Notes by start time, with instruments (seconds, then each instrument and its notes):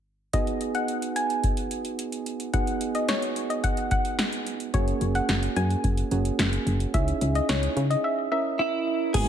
0.33 synth keys B3 D#4 F#4 G#4, synth pluck D#5, kick, closed hi-hat
0.47 closed hi-hat
0.61 closed hi-hat
0.75 synth pluck F#5, closed hi-hat
0.88 closed hi-hat
1.02 closed hi-hat
1.16 synth pluck G#5, closed hi-hat
1.30 closed hi-hat
1.44 kick, closed hi-hat
1.57 closed hi-hat
1.71 closed hi-hat
1.85 closed hi-hat
1.99 closed hi-hat
2.12 closed hi-hat
2.26 closed hi-hat
2.40 closed hi-hat
2.54 synth keys B3 D#4 F#4 G#4, synth pluck F#5, kick, closed hi-hat
2.67 closed hi-hat
2.81 closed hi-hat
2.95 synth pluck D#5, closed hi-hat
3.08 synth pluck C#5, snare, closed hi-hat
3.22 closed hi-hat
3.36 closed hi-hat
3.50 synth pluck D#5, closed hi-hat
3.64 synth pluck F#5, kick, closed hi-hat
3.77 closed hi-hat
3.91 synth pluck F#5, kick, closed hi-hat
4.05 closed hi-hat
4.19 snare, closed hi-hat
4.33 closed hi-hat
4.46 closed hi-hat
4.60 closed hi-hat
4.74 fm bass F#1, synth keys A#3 C#4 F#4 G#4, synth pluck C#5, kick, closed hi-hat
4.88 closed hi-hat
5.01 fm bass F#1, closed hi-hat
5.15 synth pluck F#5, closed hi-hat
5.29 fm bass F#1, snare, closed hi-hat
5.43 closed hi-hat
5.56 fm bass F#2, synth pluck G#5, closed hi-hat
5.70 closed hi-hat
5.84 fm bass F#1, kick, closed hi-hat
5.97 closed hi-hat
6.11 fm bass F#1, synth keys A#3 C#4 F#4 G#4, closed hi-hat
6.25 closed hi-hat
6.39 fm bass F#1, snare, closed hi-hat
6.53 closed hi-hat
6.67 fm bass F#1, closed hi-hat
6.80 closed hi-hat
6.94 fm bass C#2, synth keys C#4 D#4 E4 G#4, synth pluck E5, kick, closed hi-hat
7.08 closed hi-hat
7.21 fm bass C#2, closed hi-hat
7.35 synth pluck D#5, closed hi-hat
7.49 fm bass C#2, synth pluck C#5, snare, closed hi-hat
7.63 closed hi-hat
7.77 fm bass C#3, closed hi-hat
7.90 synth pluck D#5, closed hi-hat
8.04 synth pluck E5
8.32 synth keys C#4 E4 A#4 D#5, synth pluck E5
8.59 clean electric guitar E4
9.14 fm bass G#1, analog synth pad G#3 B3 D#4 F#4 A#4, synth keys B3 D#4 F#4 G#4, clean electric guitar G#4, kick, closed hi-hat, crash